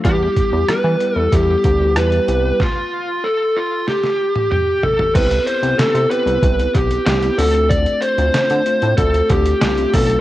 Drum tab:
CC |----------------|----------------|x---------------|----------------|
HH |x-x-x-x-x-x-xxx-|----------------|xxxxxxxxxxxxxxox|xxxxxxxxxxxxxxox|
SD |----r-------r---|o-------oo------|----o-------o---|----o-------o---|
T1 |----------------|-----------o----|----------------|----------------|
T2 |----------------|------------o---|----------------|----------------|
FT |----------------|--------------oo|----------------|----------------|
BD |o-o-----o-o-----|o---------------|o-------o-o-----|o-------o-o---o-|